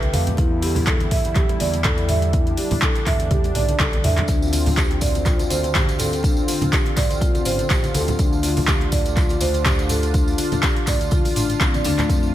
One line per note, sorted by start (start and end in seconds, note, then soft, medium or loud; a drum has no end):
0.00 0.34 D3 medium
0.00 0.34 A3 medium
0.00 0.36 G4 medium
0.00 closed hi-hat soft
0.00 high conga medium
0.13 0.33 F2 medium
0.13 0.26 F5 loud
0.13 open hi-hat medium
0.13 muted conga medium
0.13 high conga medium
0.27 closed hi-hat soft
0.27 low conga medium
0.37 1.07 E2 loud
0.37 12.05 D3 medium
0.37 4.24 G3 medium
0.37 2.31 E4 medium
0.37 0.51 E4 medium
0.37 kick loud
0.37 closed hi-hat medium
0.37 muted conga medium
0.62 0.75 G4 medium
0.62 open hi-hat medium
0.62 muted conga soft
0.75 open hi-hat medium
0.75 high conga medium
0.75 low conga medium
0.87 0.99 A4 medium
0.87 kick loud
0.87 clap loud
0.87 closed hi-hat medium
1.00 closed hi-hat soft
1.00 muted conga medium
1.11 1.56 E2 loud
1.11 1.24 E5 loud
1.11 kick medium
1.11 mid tom medium
1.11 open hi-hat medium
1.24 closed hi-hat soft
1.24 muted conga soft
1.35 1.48 G4 loud
1.35 kick loud
1.35 clap medium
1.35 closed hi-hat medium
1.35 low conga medium
1.49 closed hi-hat soft
1.49 muted conga medium
1.60 2.54 E2 loud
1.60 1.68 D5 loud
1.60 open hi-hat medium
1.60 high conga medium
1.74 closed hi-hat soft
1.74 muted conga soft
1.84 1.97 A4 medium
1.84 kick loud
1.84 clap loud
1.84 closed hi-hat medium
1.84 mid tom loud
1.84 high conga loud
1.98 closed hi-hat soft
2.09 2.21 E5 loud
2.09 mid tom medium
2.09 open hi-hat medium
2.09 muted conga medium
2.22 closed hi-hat soft
2.33 4.27 D4 medium
2.33 2.46 E4 medium
2.33 kick loud
2.33 closed hi-hat medium
2.33 muted conga medium
2.47 closed hi-hat soft
2.57 2.70 G4 medium
2.57 open hi-hat medium
2.57 muted conga soft
2.71 open hi-hat medium
2.71 high conga medium
2.71 low conga loud
2.82 2.94 A4 medium
2.82 kick loud
2.82 clap loud
2.82 closed hi-hat medium
2.95 closed hi-hat soft
2.95 muted conga medium
3.06 3.51 E2 loud
3.06 3.19 E5 loud
3.06 kick medium
3.06 clap medium
3.06 mid tom medium
3.06 open hi-hat medium
3.20 closed hi-hat soft
3.20 muted conga soft
3.31 3.43 G4 loud
3.31 kick loud
3.31 closed hi-hat medium
3.31 high tom medium
3.31 high conga medium
3.31 low conga medium
3.44 closed hi-hat soft
3.44 high tom medium
3.44 muted conga medium
3.55 3.74 B1 medium
3.55 3.63 D5 loud
3.55 mid tom loud
3.55 open hi-hat loud
3.55 high conga medium
3.69 closed hi-hat soft
3.69 mid tom medium
3.69 muted conga soft
3.80 3.92 A4 medium
3.80 kick loud
3.80 clap loud
3.80 closed hi-hat medium
3.80 mid tom medium
3.93 closed hi-hat soft
3.93 high conga medium
4.04 4.23 E2 medium
4.04 4.16 E5 loud
4.04 mid tom loud
4.04 open hi-hat medium
4.04 muted conga medium
4.04 high conga loud
4.18 clap medium
4.18 closed hi-hat soft
4.18 mid tom medium
4.18 low conga loud
4.28 4.97 D2 loud
4.28 8.15 C4 medium
4.28 4.41 D4 medium
4.28 12.34 F4 medium
4.28 kick loud
4.28 closed hi-hat medium
4.28 tambourine soft
4.28 muted conga medium
4.42 tambourine soft
4.53 4.65 F4 medium
4.53 open hi-hat loud
4.53 tambourine loud
4.53 muted conga soft
4.66 open hi-hat medium
4.66 tambourine soft
4.66 high conga medium
4.66 low conga loud
4.77 4.89 G4 medium
4.77 kick loud
4.77 clap loud
4.77 closed hi-hat medium
4.77 tambourine medium
4.90 closed hi-hat soft
4.90 muted conga soft
5.01 5.46 D2 loud
5.01 5.14 D5 loud
5.01 kick medium
5.01 mid tom medium
5.01 open hi-hat medium
5.01 tambourine medium
5.15 closed hi-hat soft
5.15 tambourine soft
5.15 muted conga soft
5.25 5.38 F4 loud
5.25 kick loud
5.25 clap medium
5.25 closed hi-hat medium
5.25 tambourine medium
5.25 low conga medium
5.39 closed hi-hat soft
5.39 tambourine soft
5.39 muted conga medium
5.50 6.43 D2 loud
5.50 5.58 C5 loud
5.50 open hi-hat loud
5.50 tambourine loud
5.50 high conga medium
5.63 closed hi-hat soft
5.63 tambourine soft
5.63 muted conga soft
5.74 5.87 G4 medium
5.74 kick loud
5.74 clap loud
5.74 closed hi-hat medium
5.74 mid tom medium
5.74 tambourine medium
5.74 high conga loud
5.89 closed hi-hat soft
5.89 tambourine soft
5.99 6.07 A4 medium
5.99 mid tom medium
5.99 open hi-hat loud
5.99 tambourine medium
5.99 muted conga medium
6.13 closed hi-hat soft
6.13 tambourine soft
6.23 6.36 D4 medium
6.23 kick loud
6.23 closed hi-hat medium
6.23 tambourine medium
6.23 muted conga medium
6.37 tambourine soft
6.48 6.60 F4 medium
6.48 open hi-hat medium
6.48 tambourine medium
6.48 muted conga soft
6.61 closed hi-hat soft
6.61 tambourine soft
6.61 high conga medium
6.61 low conga loud
6.72 6.84 G4 medium
6.72 kick loud
6.72 clap loud
6.72 closed hi-hat medium
6.72 tambourine medium
6.86 closed hi-hat soft
6.86 muted conga medium
6.97 7.41 D2 loud
6.97 7.09 D5 loud
6.97 kick medium
6.97 clap medium
6.97 mid tom medium
6.97 open hi-hat loud
6.97 tambourine medium
7.10 closed hi-hat soft
7.10 tambourine soft
7.10 muted conga soft
7.21 7.33 F4 loud
7.21 kick loud
7.21 closed hi-hat medium
7.21 tambourine medium
7.21 high conga medium
7.35 closed hi-hat soft
7.35 tambourine soft
7.35 muted conga medium
7.45 7.64 A1 medium
7.45 7.53 C5 loud
7.45 mid tom medium
7.45 open hi-hat loud
7.45 tambourine loud
7.59 closed hi-hat soft
7.59 tambourine soft
7.59 muted conga soft
7.70 7.82 G4 medium
7.70 kick loud
7.70 clap loud
7.70 closed hi-hat medium
7.70 tambourine medium
7.84 closed hi-hat soft
7.84 tambourine soft
7.84 high conga medium
7.94 8.13 D2 medium
7.94 8.02 A4 medium
7.94 open hi-hat medium
7.94 tambourine medium
7.94 muted conga medium
7.94 high conga loud
8.08 closed hi-hat soft
8.08 tambourine soft
8.08 low conga loud
8.19 8.88 D2 loud
8.19 8.32 D4 medium
8.19 12.05 D4 medium
8.19 kick loud
8.19 closed hi-hat medium
8.19 tambourine medium
8.19 muted conga medium
8.33 tambourine soft
8.43 8.55 F4 medium
8.43 open hi-hat medium
8.43 tambourine medium
8.43 muted conga soft
8.57 open hi-hat medium
8.57 tambourine soft
8.57 high conga loud
8.57 low conga medium
8.68 8.80 G4 medium
8.68 kick loud
8.68 clap loud
8.68 closed hi-hat medium
8.68 tambourine medium
8.81 closed hi-hat soft
8.81 muted conga soft
8.92 9.36 D2 loud
8.92 9.04 D5 loud
8.92 kick medium
8.92 mid tom medium
8.92 open hi-hat medium
8.92 tambourine loud
9.05 closed hi-hat soft
9.05 tambourine soft
9.05 muted conga soft
9.17 9.29 F4 loud
9.17 kick loud
9.17 clap medium
9.17 closed hi-hat medium
9.17 tambourine medium
9.17 low conga medium
9.29 closed hi-hat soft
9.29 tambourine soft
9.29 muted conga medium
9.41 10.34 D2 loud
9.41 9.48 C5 loud
9.41 open hi-hat medium
9.41 tambourine medium
9.41 high conga medium
9.54 closed hi-hat soft
9.54 tambourine soft
9.54 muted conga soft
9.65 9.77 G4 medium
9.65 kick loud
9.65 clap loud
9.65 closed hi-hat medium
9.65 mid tom medium
9.65 tambourine medium
9.65 high conga loud
9.79 closed hi-hat soft
9.79 tambourine soft
9.89 9.97 A4 medium
9.89 mid tom medium
9.89 open hi-hat medium
9.89 tambourine loud
9.89 muted conga soft
10.03 closed hi-hat soft
10.03 tambourine soft
10.14 10.27 D4 medium
10.14 kick loud
10.14 closed hi-hat medium
10.14 tambourine medium
10.14 muted conga soft
10.28 tambourine soft
10.38 10.50 F4 medium
10.38 open hi-hat medium
10.38 tambourine loud
10.38 muted conga soft
10.52 closed hi-hat soft
10.52 tambourine soft
10.52 high conga medium
10.52 low conga medium
10.63 10.75 G4 medium
10.63 kick loud
10.63 clap loud
10.63 closed hi-hat medium
10.63 tambourine medium
10.76 closed hi-hat soft
10.76 muted conga soft
10.87 11.31 D2 medium
10.87 10.99 D5 loud
10.87 kick medium
10.87 clap medium
10.87 mid tom medium
10.87 open hi-hat medium
10.87 tambourine loud
11.01 closed hi-hat soft
11.01 tambourine soft
11.01 muted conga soft
11.11 11.24 F4 loud
11.11 kick loud
11.11 closed hi-hat medium
11.11 tambourine medium
11.11 high conga medium
11.25 open hi-hat medium
11.25 tambourine soft
11.25 muted conga medium
11.36 11.55 A1 medium
11.36 11.49 D4 medium
11.36 mid tom loud
11.36 open hi-hat medium
11.36 tambourine medium
11.49 closed hi-hat soft
11.49 tambourine soft
11.49 muted conga soft
11.61 11.79 A1 medium
11.61 kick loud
11.61 clap loud
11.61 closed hi-hat medium
11.61 tambourine medium
11.74 11.84 D5 loud
11.74 closed hi-hat soft
11.74 tambourine soft
11.74 high conga medium
11.84 12.03 D2 medium
11.84 11.98 D4 loud
11.84 open hi-hat medium
11.84 tambourine medium
11.84 muted conga medium
11.84 high conga loud
11.98 12.04 A3 loud
11.98 clap medium
11.98 closed hi-hat soft
11.98 tambourine soft
11.98 low conga loud
12.09 12.34 F2 loud
12.09 12.34 D3 medium
12.09 12.34 A3 medium
12.09 12.22 F4 medium
12.09 kick loud
12.09 closed hi-hat medium
12.09 tambourine medium
12.09 muted conga medium
12.23 tambourine soft